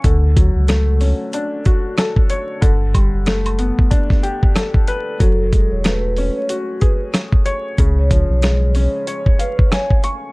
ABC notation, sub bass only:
X:1
M:4/4
L:1/16
Q:"Swing 16ths" 1/4=93
K:F#m
V:1 name="Sub bass" clef=bass
D,,3 C,,4 z8 z | =G,,,3 F,,,4 z8 z | F,,,3 E,,,4 z8 z | C,,3 B,,,4 z8 z |]